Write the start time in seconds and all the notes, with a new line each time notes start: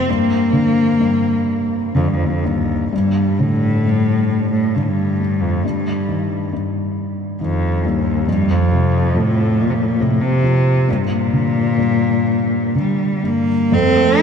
Already playing: C4
0.09 G2 A#3
0.53 D3
1.00 G2
1.95 F2 D3
2.08 G2
2.13 F2
2.25 D#2
2.29 F2
2.44 D#2 G2
2.92 G2
3.40 A2 D3
3.85 G2
4.52 A2
4.75 G2 D3
4.82 A2
4.88 G2
5.20 G2
5.41 F2
5.63 G2
6.08 D#3
6.53 G2
7.41 F2 D#3
7.85 D#2 G2
8.28 F2 G2
8.50 F2
8.72 C3
9.14 A2 F3
9.61 A#2
9.70 A#2 C3
9.83 A2
9.87 A#2
10.00 A2 C3
10.21 C3
10.43 F3
10.88 G2 A#2
10.95 C3
11.04 A#2
11.33 D3
11.79 G2
12.75 D3 G3
13.23 G2 A#3
13.72 F2 D#3 A3 C4 A4